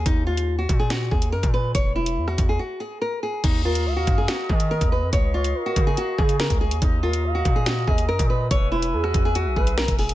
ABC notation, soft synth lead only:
X:1
M:4/4
L:1/8
Q:1/4=142
K:Ebm
V:1 name="Soft synth lead"
z8 | z8 | z B f3 e3 | z d B3 A3 |
z B f3 e3 | z =B ^G3 B z2 |]